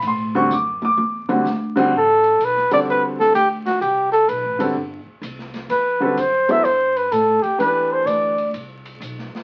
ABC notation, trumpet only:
X:1
M:4/4
L:1/8
Q:"Swing" 1/4=127
K:Ador
V:1 name="Trumpet"
z8 | A2 B d B A G F | G A B2 z4 | B B c e c B A G |
B c d2 z4 |]